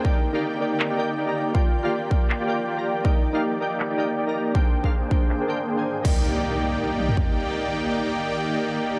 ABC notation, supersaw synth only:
X:1
M:4/4
L:1/16
Q:"Swing 16ths" 1/4=160
K:Eb
V:1 name="Supersaw synth"
[B,EGdg] z2 [B,EGdg]3 [B,EGdg]3 [B,EGdg]3 [B,EGdg]4 | [B,FGdg] z2 [B,FGdg]3 [B,FGdg]3 [B,FGdg]3 [B,FGdg]4 | [B,E] z2 [B,EGdg]3 [B,EGdg]3 [B,EGdg]3 [B,EGdg]4 | [B,DAc] z2 [B,DAcg]3 [B,c]3 [B,DAcg]3 [B,DAcg]4 |
[B,EGdg]16- | [B,EGdg]16 |]